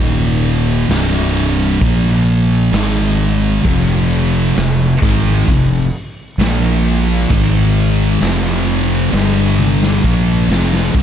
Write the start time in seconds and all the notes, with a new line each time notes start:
Already playing: D#1
0.00 D#2 A#2 D#3
0.89 C1 C2 G2 C3, snare, open hi-hat
1.81 A#1 A#2 F3 A#3, kick, open hi-hat
2.06 snare
2.72 G#1 G#2 D#3 G#3, snare, open hi-hat
3.65 F1 F2 C3 F3, kick, open hi-hat
4.56 F1 F2 C3, snare, open hi-hat
5.02 G#1 G#2 D#3 G#3, kick
5.48 F1 F2 C3, kick, open hi-hat
6.38 A#1 A#2 F3 A#3, snare, open hi-hat
7.30 G#1 G#2 D#3 G#3, kick, open hi-hat
8.21 F1 F2 C3 F3, snare, open hi-hat
9.13 G1 G2 D3 G3, snare
9.59 mid tom
9.83 snare
10.04 A#1 A#2 F3 A#3, kick
10.49 F1 F2 C3 F3, snare
10.74 snare
10.94 C1 C2 G2 C3, kick, open hi-hat